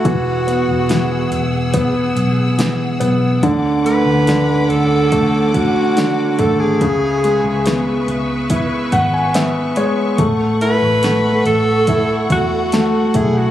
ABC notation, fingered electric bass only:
X:1
M:4/4
L:1/16
Q:1/4=71
K:C#m
V:1 name="Fingered electric bass" clef=bass
E,,,3 E,,,3 E,,,4 B,,,4 B,,,2 | =D,,3 D,,3 D,,4 A,,,4 G,,,2 | C,,3 C,,3 C,,4 G,,,4 z2 | A,,,3 A,,,3 A,,,4 E,,4 B,,,2 |]